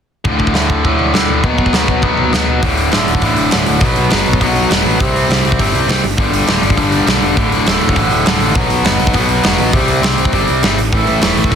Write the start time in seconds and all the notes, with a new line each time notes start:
0.24 D2 A2 D3, kick, floor tom
0.39 kick, floor tom
0.47 kick
0.53 D2 A2 D3, snare, floor tom
0.70 kick, floor tom
0.84 D2 A2 D3, kick, floor tom
0.99 floor tom
1.13 D2 A2 D3, snare, floor tom
1.28 floor tom
1.44 B2 F#3 B3, kick, floor tom
1.58 kick, floor tom
1.66 kick
1.73 B2 F#3 B3, snare, floor tom
1.88 kick, floor tom
2.02 B2 F#3 B3, kick, floor tom
2.17 floor tom
2.33 B2 F#3 B3, snare, floor tom
2.48 floor tom
2.62 D1 D2 A2 D3, kick, open hi-hat
2.77 open hi-hat
2.92 D1 D2 A2 D3, snare, open hi-hat
3.07 D1, open hi-hat
3.15 kick
3.22 A1 D2 A2 D3, kick, open hi-hat
3.36 D1, open hi-hat
3.51 D1 D2 A2 D3, snare, open hi-hat
3.66 D1, open hi-hat
3.80 B1 B2 F#3 B3, kick, open hi-hat
3.96 B1, open hi-hat
4.10 F#1 B2 F#3 B3, snare, open hi-hat
4.26 B1, open hi-hat
4.33 kick
4.40 B1 B2 F#3 B3, kick, open hi-hat
4.56 open hi-hat
4.70 E1 B2 F#3 B3, snare, open hi-hat
4.85 A1, open hi-hat
4.99 C2 C3 G3 C4, kick, open hi-hat
5.16 open hi-hat
5.30 C2 C3 G3 C4, snare, open hi-hat
5.45 C2, open hi-hat
5.52 kick
5.58 G1 C3 G3 C4, kick, open hi-hat
5.74 C2, open hi-hat
5.88 C2 C3 G3 C4, snare, open hi-hat
6.04 G1, open hi-hat
6.18 G1 G2 D3 G3, kick
6.32 G1, open hi-hat
6.47 D1 G2 D3 G3, snare, open hi-hat
6.63 G1, open hi-hat
6.70 kick
6.76 G1 G2 D3 G3, kick, open hi-hat
6.92 open hi-hat
7.06 B1 G2 D3 G3, snare, open hi-hat
7.22 E1, open hi-hat
7.37 D1 D2 A2 D3, kick, open hi-hat
7.52 open hi-hat
7.66 D1 D2 A2 D3, snare, open hi-hat
7.81 D1, open hi-hat
7.89 kick
7.96 A1 D2 A2 D3, kick, open hi-hat
8.10 D1, open hi-hat
8.26 D1 D2 A2 D3, snare, open hi-hat
8.40 A1, open hi-hat
8.55 B1 B2 F#3 B3, kick, open hi-hat
8.70 B1, open hi-hat
8.84 F#1 B2 F#3 B3, snare, open hi-hat
9.00 B1, open hi-hat
9.07 kick
9.14 B1 B2 F#3 B3, kick, open hi-hat
9.29 open hi-hat
9.44 E1 B2 F#3 B3, snare, open hi-hat
9.58 A1, open hi-hat
9.73 C2 C3 G3 C4, kick, open hi-hat
9.88 open hi-hat
10.02 C2 C3 G3 C4, snare, open hi-hat
10.18 C2, open hi-hat
10.25 kick
10.32 G1 C3 G3 C4, kick, open hi-hat
10.48 C2, open hi-hat
10.63 G1 C3 G3 C4, snare, open hi-hat
10.78 A1, open hi-hat
10.93 A1 A2 E3 A3, kick, open hi-hat
11.07 A1, open hi-hat
11.21 E1 A2 E3 A3, snare, open hi-hat
11.37 A1, open hi-hat
11.44 kick
11.51 A2 E3 A3, kick